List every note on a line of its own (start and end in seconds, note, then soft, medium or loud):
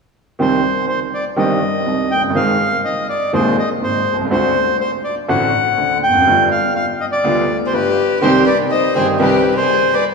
0.39 0.60 C2 medium
0.39 0.60 C3 medium
0.39 0.60 D#3 soft
0.39 0.60 G3 soft
0.39 0.60 C4 soft
0.39 0.60 G4 soft
0.39 0.86 C5 medium
0.89 1.00 C5 medium
1.14 1.25 D5 medium
1.36 1.58 G1 medium
1.36 1.58 G2 medium
1.36 1.58 D#3 soft
1.36 1.58 G3 soft
1.36 1.58 C4 soft
1.36 1.58 G4 medium
1.36 2.13 D#5 medium
1.86 2.07 C2 soft
1.86 2.07 C3 soft
2.11 2.22 G5 medium
2.17 2.23 F1 soft
2.23 2.29 F#1 soft
2.30 2.36 G1 soft
2.35 2.56 G#1 medium
2.35 2.56 G#2 medium
2.35 2.55 D#3 soft
2.35 2.56 G#3 soft
2.35 2.56 C4 soft
2.35 2.56 G#4 soft
2.35 2.81 F5 medium
2.85 3.07 D#5 medium
3.09 3.32 D5 medium
3.33 3.54 D#1 medium
3.33 3.54 D#2 medium
3.33 3.53 D#3 soft
3.33 3.54 G#3 soft
3.33 3.54 C4 soft
3.33 3.54 G#4 medium
3.33 3.56 C5 medium
3.59 3.69 D#5 medium
3.82 4.03 G#1 soft
3.82 4.02 G#2 soft
3.82 4.17 C5 medium
4.13 4.19 B1 soft
4.19 4.25 C2 soft
4.25 4.31 C#2 medium
4.31 4.51 D2 medium
4.31 4.51 D3 medium
4.31 4.51 A3 soft
4.31 4.51 C4 soft
4.31 4.52 F#4 medium
4.31 4.77 C5 medium
4.80 4.91 C5 medium
5.04 5.15 D5 medium
5.28 5.49 A1 medium
5.28 5.49 A2 medium
5.28 5.49 D3 medium
5.28 5.49 A3 medium
5.28 5.49 C4 soft
5.28 5.49 F#4 medium
5.28 5.98 F#5 medium
5.77 5.98 D2 soft
5.77 5.98 D3 soft
6.03 6.48 G5 medium
6.09 6.14 E2 soft
6.14 6.20 F2 soft
6.21 6.27 F#2 medium
6.27 6.47 G1 medium
6.27 6.47 G2 medium
6.27 6.47 D3 medium
6.27 6.47 G3 soft
6.27 6.47 B3 soft
6.27 6.47 F4 medium
6.51 6.73 F5 medium
6.75 6.86 F5 medium
7.01 7.06 D#5 medium
7.12 7.58 D5 medium
7.24 7.45 D2 medium
7.24 7.45 D3 medium
7.24 7.45 G3 soft
7.24 7.45 B3 soft
7.24 7.45 F4 medium
7.66 7.72 G#4 soft
7.66 7.73 C5 soft
7.73 7.94 G1 soft
7.73 7.94 G2 soft
7.73 8.19 G4 medium
7.73 8.19 B4 medium
8.21 8.43 C2 medium
8.21 8.43 C3 medium
8.21 8.42 D#3 medium
8.21 8.43 G3 soft
8.21 8.43 C4 soft
8.21 8.43 C4 medium
8.21 8.43 D#4 medium
8.21 8.45 G4 medium
8.21 8.43 G4 medium
8.21 8.45 C5 medium
8.46 8.57 B4 medium
8.46 8.58 D5 medium
8.71 8.94 C5 medium
8.71 8.94 D#5 medium
8.95 9.16 G1 soft
8.95 9.16 G2 soft
8.95 9.16 D#3 soft
8.95 9.16 G3 soft
8.95 9.16 C4 soft
8.95 9.16 D#4 soft
8.95 9.16 G4 soft
8.95 9.17 G4 soft
8.95 9.06 G#4 medium
8.95 9.07 C5 medium
9.19 9.40 C2 medium
9.19 9.40 C3 medium
9.19 9.40 D#3 medium
9.19 9.40 G3 medium
9.19 9.40 C4 medium
9.19 9.41 D#4 medium
9.19 9.41 G4 medium
9.19 9.54 G4 medium
9.19 9.54 B4 medium
9.56 9.90 G#4 medium
9.56 9.94 C5 medium
9.93 10.04 B4 medium
9.93 10.04 D5 medium